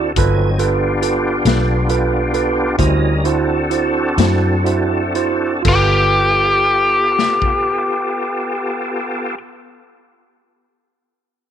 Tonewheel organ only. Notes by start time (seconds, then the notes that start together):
Already playing: C4 D4 F#4 A4
0.16 F#3 C4 D#4 G#5
0.59 B3 D4 F4 G4
2.78 G3 C#4 A#4 D#5
3.25 C4 D4 F#4 A4
5.65 B3 F4 G4 A4